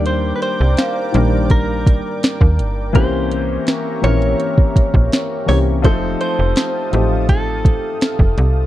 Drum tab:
HH |x-x-x-x-x-x-x-x-|x-x-x-xxx-x-x-o-|x-x-x-x-x-x-x-x-|
SD |----o-------o---|----o-------o---|----o-------o---|
BD |--------o-o--o--|o--------ooo----|o-------o-o--o--|